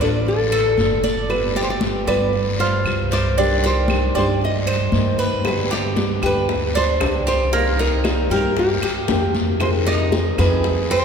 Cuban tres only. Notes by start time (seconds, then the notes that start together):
0.01 D5
0.52 A4
1.04 D5
1.56 G4
2.07 D5
2.60 F4
3.12 C5
3.38 D4
3.64 G4
4.15 D5
4.67 C5
5.19 B4
5.71 G4
6.23 B4
6.75 D4
7.27 G4
7.53 A#3
7.79 D#4
8.31 A#4
8.83 G4
9.87 D#4
10.39 G#4
10.91 C4